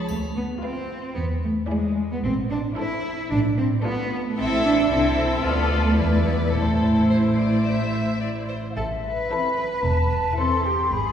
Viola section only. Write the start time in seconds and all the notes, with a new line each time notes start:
0.63 F4
1.69 E4
2.78 E4
3.85 F4
4.38 E4
4.91 E4
5.44 F4
5.98 E4
6.53 E4
9.31 E4
10.38 E4